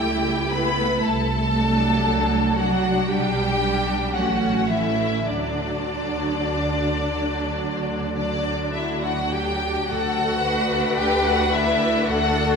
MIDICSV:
0, 0, Header, 1, 6, 480
1, 0, Start_track
1, 0, Key_signature, 2, "major"
1, 0, Tempo, 1034483
1, 484, Time_signature, 4, 2, 24, 8
1, 1927, Tempo, 1121495
1, 2407, Tempo, 1153846
1, 4327, Tempo, 1084991
1, 5509, End_track
2, 0, Start_track
2, 0, Title_t, "Violin section"
2, 0, Program_c, 0, 48
2, 0, Note_on_c, 0, 79, 80
2, 239, Note_on_c, 0, 83, 79
2, 243, Note_off_c, 0, 79, 0
2, 481, Note_off_c, 0, 83, 0
2, 481, Note_on_c, 0, 81, 75
2, 1194, Note_on_c, 0, 78, 70
2, 1195, Note_off_c, 0, 81, 0
2, 1427, Note_on_c, 0, 79, 79
2, 1430, Note_off_c, 0, 78, 0
2, 1922, Note_off_c, 0, 79, 0
2, 1922, Note_on_c, 0, 78, 64
2, 2156, Note_off_c, 0, 78, 0
2, 2157, Note_on_c, 0, 76, 68
2, 2399, Note_on_c, 0, 74, 67
2, 2404, Note_off_c, 0, 76, 0
2, 3597, Note_off_c, 0, 74, 0
2, 3602, Note_on_c, 0, 74, 74
2, 3828, Note_off_c, 0, 74, 0
2, 3846, Note_on_c, 0, 76, 58
2, 3965, Note_on_c, 0, 78, 69
2, 3967, Note_off_c, 0, 76, 0
2, 4084, Note_on_c, 0, 79, 78
2, 4086, Note_off_c, 0, 78, 0
2, 4325, Note_off_c, 0, 79, 0
2, 4327, Note_on_c, 0, 78, 85
2, 4810, Note_on_c, 0, 79, 83
2, 4811, Note_off_c, 0, 78, 0
2, 4930, Note_off_c, 0, 79, 0
2, 4933, Note_on_c, 0, 78, 88
2, 5050, Note_on_c, 0, 76, 84
2, 5051, Note_off_c, 0, 78, 0
2, 5288, Note_off_c, 0, 76, 0
2, 5289, Note_on_c, 0, 78, 89
2, 5509, Note_off_c, 0, 78, 0
2, 5509, End_track
3, 0, Start_track
3, 0, Title_t, "Violin section"
3, 0, Program_c, 1, 48
3, 0, Note_on_c, 1, 67, 61
3, 233, Note_off_c, 1, 67, 0
3, 242, Note_on_c, 1, 71, 69
3, 478, Note_on_c, 1, 69, 71
3, 483, Note_off_c, 1, 71, 0
3, 1180, Note_off_c, 1, 69, 0
3, 1195, Note_on_c, 1, 66, 62
3, 1434, Note_on_c, 1, 67, 64
3, 1435, Note_off_c, 1, 66, 0
3, 1923, Note_on_c, 1, 66, 57
3, 1926, Note_off_c, 1, 67, 0
3, 2157, Note_on_c, 1, 64, 54
3, 2161, Note_off_c, 1, 66, 0
3, 2404, Note_off_c, 1, 64, 0
3, 2406, Note_on_c, 1, 62, 63
3, 3593, Note_off_c, 1, 62, 0
3, 3608, Note_on_c, 1, 62, 53
3, 3830, Note_off_c, 1, 62, 0
3, 3847, Note_on_c, 1, 64, 57
3, 3968, Note_off_c, 1, 64, 0
3, 3969, Note_on_c, 1, 66, 60
3, 4089, Note_on_c, 1, 67, 62
3, 4090, Note_off_c, 1, 66, 0
3, 4327, Note_off_c, 1, 67, 0
3, 4328, Note_on_c, 1, 66, 75
3, 4802, Note_off_c, 1, 66, 0
3, 4812, Note_on_c, 1, 67, 79
3, 4926, Note_on_c, 1, 66, 67
3, 4928, Note_off_c, 1, 67, 0
3, 5046, Note_on_c, 1, 64, 76
3, 5047, Note_off_c, 1, 66, 0
3, 5284, Note_on_c, 1, 66, 69
3, 5286, Note_off_c, 1, 64, 0
3, 5509, Note_off_c, 1, 66, 0
3, 5509, End_track
4, 0, Start_track
4, 0, Title_t, "Viola section"
4, 0, Program_c, 2, 48
4, 0, Note_on_c, 2, 57, 47
4, 0, Note_on_c, 2, 64, 46
4, 233, Note_off_c, 2, 57, 0
4, 233, Note_off_c, 2, 64, 0
4, 242, Note_on_c, 2, 64, 48
4, 244, Note_on_c, 2, 57, 41
4, 478, Note_off_c, 2, 64, 0
4, 479, Note_off_c, 2, 57, 0
4, 722, Note_on_c, 2, 62, 50
4, 723, Note_on_c, 2, 54, 57
4, 1187, Note_off_c, 2, 62, 0
4, 1188, Note_off_c, 2, 54, 0
4, 1193, Note_on_c, 2, 54, 48
4, 1193, Note_on_c, 2, 62, 53
4, 1426, Note_off_c, 2, 62, 0
4, 1429, Note_off_c, 2, 54, 0
4, 1431, Note_on_c, 2, 62, 56
4, 1432, Note_on_c, 2, 55, 55
4, 1667, Note_off_c, 2, 55, 0
4, 1667, Note_off_c, 2, 62, 0
4, 1673, Note_on_c, 2, 55, 51
4, 1673, Note_on_c, 2, 62, 45
4, 1919, Note_off_c, 2, 55, 0
4, 1919, Note_off_c, 2, 62, 0
4, 1924, Note_on_c, 2, 57, 48
4, 1927, Note_on_c, 2, 61, 50
4, 2157, Note_off_c, 2, 57, 0
4, 2158, Note_off_c, 2, 61, 0
4, 2166, Note_on_c, 2, 57, 42
4, 2167, Note_on_c, 2, 61, 44
4, 2404, Note_off_c, 2, 57, 0
4, 2404, Note_off_c, 2, 61, 0
4, 2408, Note_on_c, 2, 62, 45
4, 2410, Note_on_c, 2, 54, 42
4, 2643, Note_off_c, 2, 54, 0
4, 2643, Note_off_c, 2, 62, 0
4, 2648, Note_on_c, 2, 54, 43
4, 2648, Note_on_c, 2, 62, 44
4, 3123, Note_off_c, 2, 54, 0
4, 3123, Note_off_c, 2, 62, 0
4, 3133, Note_on_c, 2, 54, 44
4, 3134, Note_on_c, 2, 62, 41
4, 3601, Note_off_c, 2, 54, 0
4, 3601, Note_off_c, 2, 62, 0
4, 3612, Note_on_c, 2, 54, 43
4, 3612, Note_on_c, 2, 62, 41
4, 4082, Note_off_c, 2, 54, 0
4, 4082, Note_off_c, 2, 62, 0
4, 4086, Note_on_c, 2, 54, 37
4, 4087, Note_on_c, 2, 62, 40
4, 4321, Note_off_c, 2, 54, 0
4, 4321, Note_off_c, 2, 62, 0
4, 4570, Note_on_c, 2, 57, 61
4, 4571, Note_on_c, 2, 62, 65
4, 5040, Note_off_c, 2, 57, 0
4, 5040, Note_off_c, 2, 62, 0
4, 5046, Note_on_c, 2, 57, 52
4, 5048, Note_on_c, 2, 62, 62
4, 5509, Note_off_c, 2, 57, 0
4, 5509, Note_off_c, 2, 62, 0
4, 5509, End_track
5, 0, Start_track
5, 0, Title_t, "Cello section"
5, 0, Program_c, 3, 48
5, 0, Note_on_c, 3, 55, 55
5, 243, Note_on_c, 3, 59, 64
5, 245, Note_off_c, 3, 55, 0
5, 483, Note_off_c, 3, 59, 0
5, 483, Note_on_c, 3, 57, 63
5, 1183, Note_off_c, 3, 57, 0
5, 1190, Note_on_c, 3, 54, 67
5, 1427, Note_off_c, 3, 54, 0
5, 1429, Note_on_c, 3, 55, 62
5, 1914, Note_off_c, 3, 55, 0
5, 1922, Note_on_c, 3, 54, 58
5, 2161, Note_off_c, 3, 54, 0
5, 2161, Note_on_c, 3, 52, 57
5, 2403, Note_on_c, 3, 50, 54
5, 2406, Note_off_c, 3, 52, 0
5, 4072, Note_off_c, 3, 50, 0
5, 4332, Note_on_c, 3, 69, 68
5, 4557, Note_off_c, 3, 69, 0
5, 4572, Note_on_c, 3, 71, 76
5, 5286, Note_on_c, 3, 69, 77
5, 5288, Note_off_c, 3, 71, 0
5, 5509, Note_off_c, 3, 69, 0
5, 5509, End_track
6, 0, Start_track
6, 0, Title_t, "Double bass section"
6, 0, Program_c, 4, 48
6, 7, Note_on_c, 4, 37, 52
6, 427, Note_off_c, 4, 37, 0
6, 481, Note_on_c, 4, 36, 62
6, 902, Note_off_c, 4, 36, 0
6, 961, Note_on_c, 4, 36, 58
6, 1380, Note_off_c, 4, 36, 0
6, 1439, Note_on_c, 4, 35, 60
6, 1869, Note_off_c, 4, 35, 0
6, 1924, Note_on_c, 4, 33, 62
6, 2348, Note_off_c, 4, 33, 0
6, 2406, Note_on_c, 4, 38, 54
6, 2834, Note_off_c, 4, 38, 0
6, 2894, Note_on_c, 4, 38, 45
6, 3317, Note_off_c, 4, 38, 0
6, 3372, Note_on_c, 4, 38, 48
6, 3792, Note_off_c, 4, 38, 0
6, 3848, Note_on_c, 4, 38, 57
6, 4272, Note_off_c, 4, 38, 0
6, 4327, Note_on_c, 4, 38, 81
6, 4755, Note_off_c, 4, 38, 0
6, 4811, Note_on_c, 4, 38, 59
6, 5231, Note_off_c, 4, 38, 0
6, 5289, Note_on_c, 4, 38, 74
6, 5509, Note_off_c, 4, 38, 0
6, 5509, End_track
0, 0, End_of_file